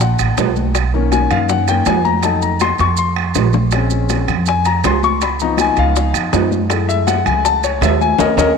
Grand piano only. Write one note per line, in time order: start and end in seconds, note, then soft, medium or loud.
0.00 0.71 E3 soft
0.00 0.71 A#3 soft
0.00 0.71 D4 soft
0.00 0.71 F#5 medium
0.94 1.67 D#3 medium
0.94 1.67 A#3 medium
0.94 1.67 C#4 medium
1.12 1.30 G#5 medium
1.31 1.49 F5 medium
1.50 1.67 F#5 medium
1.68 1.85 D#3 soft
1.68 1.85 A#3 soft
1.68 1.85 C#4 medium
1.68 1.86 G5 medium
1.87 2.05 G#5 medium
2.05 2.23 A#5 loud
2.23 2.48 F#3 soft
2.23 2.49 A3 soft
2.23 2.49 D#4 medium
2.23 2.42 A5 medium
2.42 2.60 A#5 medium
2.61 2.79 C6 loud
2.81 2.98 C#6 loud
2.99 4.06 C6 medium
3.73 4.26 G#3 soft
3.73 4.26 C4 soft
3.73 4.26 C#4 medium
4.48 4.65 G#5 medium
4.66 4.84 A#5 loud
4.86 5.03 C6 medium
5.04 5.21 C#6 loud
5.23 5.40 B5 medium
5.41 6.32 F3 medium
5.41 6.32 B3 soft
5.41 6.32 D#4 medium
5.41 5.59 A#5 medium
5.61 5.78 G#5 medium
5.79 6.13 F5 medium
6.33 6.50 F3 soft
6.33 6.50 B3 soft
6.33 6.50 D#4 medium
6.70 8.15 G#3 soft
6.70 8.15 A3 soft
6.70 8.15 E4 medium
6.89 7.07 E5 loud
7.07 7.25 F#5 medium
7.26 7.44 G#5 medium
7.45 7.63 A5 loud
7.64 7.82 C#5 medium
7.83 8.01 E5 medium
8.01 8.19 G#5 loud
8.20 8.32 A#4 medium
8.20 8.32 C#5 medium
8.20 8.31 D#5 medium
8.38 8.50 A#4 loud
8.38 8.50 C#5 medium
8.38 8.50 D#5 loud